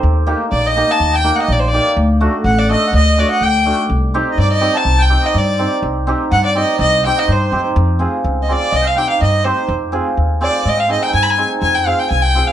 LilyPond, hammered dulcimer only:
\new Staff \with { instrumentName = "Hammered dulcimer" } { \time 2/4 \tempo 4 = 124 r8 <bes ees' g'>16 r8. <bes ees' g'>16 r16 | r8 <bes ees' g'>16 r8. <bes ees' g'>16 r16 | r8 <a d' fis'>16 r8. <a d' a'>16 r16 | r8 <a d' fis'>16 r8. <a d' fis'>16 r16 |
r8 <c' ees' g'>16 r8. <c' ees' g'>16 r16 | r8 <c' ees' g'>16 r8. <c' ees' g'>16 r16 | r8 <c' ees' g'>16 r8. <c' ees' g'>16 r16 | r8 <c' ees' g'>16 r8. <c' ees' g'>16 r16 |
r8 <c' f' aes'>16 r8. <c' f' aes'>16 r16 | r8 <c' ees' g'>16 r8. <c' ees' g'>16 r16 | r8 <c' f' aes'>16 r8. <c' f' aes'>16 r16 | r8 <c' ees' aes'>16 r8. <c' ees' aes'>16 r16 |
r8 <c' f' aes'>16 r8. <c' f' aes'>16 r16 | }